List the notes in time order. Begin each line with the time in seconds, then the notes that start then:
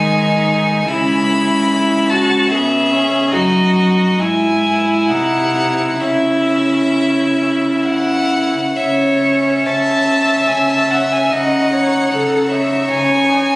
Already playing: D#3 G#3 D#4 G#5
0.89 C#3 G#3 E4 B5
1.71 E4
2.10 F#4 A5
2.50 B3 G#4 E5
2.91 C#4
3.31 F#2 D#4 F#4 D#5
4.19 G#2 E4 G#5
4.64 E4
5.00 G#5
5.07 C3 D#4 F#5
6.00 C#3 C#4 E4 E5
7.87 F#5
8.77 C#3 C#5 E5
9.23 C#4
9.66 C#3 E5 A5
10.08 C#4
10.48 C#3 G#5
10.69 A5
10.90 C#4 F#5
11.12 G#5
11.31 C#3 D#4 D#5 F#5
11.72 D#4 C#5
12.11 C#3 A4
12.50 D#4 C#5 E5
12.90 C#3 G#5
13.31 D#4